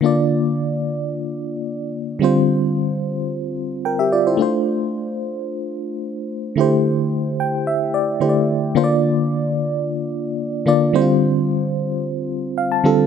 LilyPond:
\new Staff \with { instrumentName = "FM electric piano" } { \time 4/4 \key bes \lydian \tempo 4 = 110 << { r1 | r2. <bes' g''>16 <g' e''>16 <f' d''>16 <e' c''>16~ | <e' c''>16 r2. r8. | r4. g''8 e''8 d''8 c''4 |
r1 | r2. f''16 a''8. | } \\ { <d bes d' f' d''>1 | <d g c' f' c''>2.~ <d g c' f' c''>8 r8 | <a d' f' c''>1 | <d a e' g' c''>2. <d a e' g' c'' d''>4 |
<d bes d' f' c'' d''>4. r2 <d bes d' f' d''>8 | <d g c' e' f' c''>4. r2 <d g c' f' a'>8 | } >> }